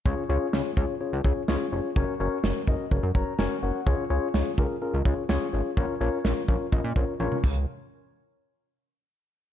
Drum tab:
CC |----------------|----------------|----------------|--------------x-|
SD |----o-------o---|----o-------o---|----o-------o---|----o-----------|
T1 |----------------|----------------|----------------|------------o---|
T2 |----------------|----------------|----------------|-------------o--|
BD |o-----o---o-----|o-----o-o-o-----|o-----o---o-----|o-----o-o-o---o-|

CC |----------------|
SD |----------------|
T1 |----------------|
T2 |----------------|
BD |----------------|